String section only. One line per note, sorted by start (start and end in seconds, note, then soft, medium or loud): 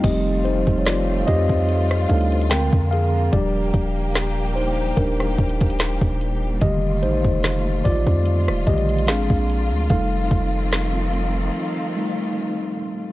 0.04 2.48 F3 medium
0.04 2.48 G3 medium
0.04 2.48 A3 medium
0.04 2.48 C4 medium
0.04 3.29 F4 medium
2.50 3.32 D3 medium
2.50 3.32 F3 medium
2.50 3.32 G#3 medium
2.50 6.57 A#3 medium
3.33 9.04 A#2 medium
3.33 9.04 G3 medium
3.33 6.58 G4 medium
6.62 9.06 A3 medium
6.62 13.12 F4 medium
9.09 9.90 D3 medium
9.09 13.12 F3 medium
9.09 9.90 G#3 medium
9.09 9.90 A#3 medium
9.90 13.12 D#3 medium
9.90 13.12 A3 medium
9.90 13.12 C4 medium